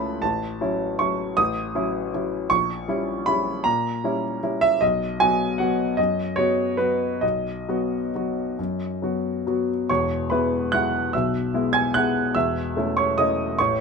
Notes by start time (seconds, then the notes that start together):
Already playing: C#2 A3 C#4 E4 A5 B5
0.22 A1 A5
0.61 F#3 C#4 E4
0.99 F#3 C#4 E4 C#6
1.37 A1 D#6
1.75 F#3 C#4 E4
2.14 F#3 C#4 E4
2.50 A#1 C#6
2.88 G3 C#4 E4
3.26 G3 C#4 E4 B5
3.64 A#2 A#5
4.04 G3 C#4 E4
4.43 G3 C#4 E4
4.61 E5
4.81 B1 D#5
5.20 F#3 B3 F#4 G#5
5.58 F#3 B3 F#4 F#5
5.97 F#2 D#5
6.36 F#3 B3 F#4 C#5
6.77 F#3 B3 F#4 B4
7.21 B1 D#5
7.69 F#3 B3 F#4
8.15 F#3 B3 F#4
8.59 F#2
9.02 F#3 B3 F#4
9.47 F#3 B3 F#4
9.89 E1 E2 C#5 C#6
10.30 G#3 B3 E4 B4 B5
10.72 G#3 B3 E4 F#5 F#6
11.13 B1 B2 E5 E6
11.54 G#3 B3 E4
11.73 G#5 G#6
11.94 G#3 B3 E4 F#5 F#6
12.35 E1 E2 E5 E6
12.77 A3 C#4 E4
12.97 C#5 C#6
13.18 A3 C#4 E4 D#5 D#6
13.59 A1 A2 C#5 C#6